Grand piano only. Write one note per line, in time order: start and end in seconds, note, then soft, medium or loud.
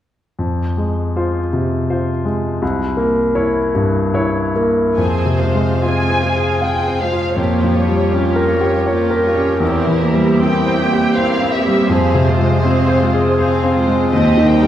0.39 2.58 F2 soft
0.77 1.38 G#3 soft
1.16 1.49 F4 soft
1.16 1.50 C5 soft
1.53 2.11 C3 soft
1.90 2.22 F4 soft
1.90 2.22 C5 soft
2.25 2.62 G#3 soft
2.62 4.94 C2 soft
2.97 3.58 A#3 soft
3.35 3.71 E4 soft
3.35 3.71 C#5 soft
3.75 4.40 G2 soft
4.14 4.52 E4 soft
4.14 4.52 C#5 soft
4.56 4.98 A#3 soft
4.98 7.34 F2 soft
5.26 5.72 C3 soft
5.55 5.99 G#3 soft
5.83 6.26 F4 soft
6.10 6.52 C5 soft
6.36 6.77 G#4 soft
6.62 7.03 F5 soft
6.88 7.28 C5 soft
7.12 7.38 F4 soft
7.36 9.57 F2 soft
7.63 8.03 F3 soft
7.87 8.27 G3 soft
8.11 8.52 C#4 soft
8.36 8.77 A#4 soft
8.61 9.01 G4 soft
8.86 9.26 C#5 soft
9.10 9.51 A#4 soft
9.35 9.61 C#4 soft
9.60 11.86 E2 soft
9.86 10.30 E3 soft
10.13 10.56 G3 soft
10.40 10.82 C4 soft
10.66 11.06 C5 soft
10.92 11.31 G4 soft
11.15 11.55 C5 soft
11.42 11.81 C4 soft
11.67 11.91 G3 soft
11.89 14.08 F2 soft
12.15 12.55 C3 soft
12.40 12.80 G#3 soft
12.64 13.04 C4 soft
12.88 13.28 C5 soft
13.14 13.53 G#4 soft
13.39 13.78 C5 soft
13.63 14.03 C4 soft
13.88 14.12 G#3 soft
14.13 14.67 D#2 soft
14.37 14.67 D#3 soft
14.62 14.67 G3 soft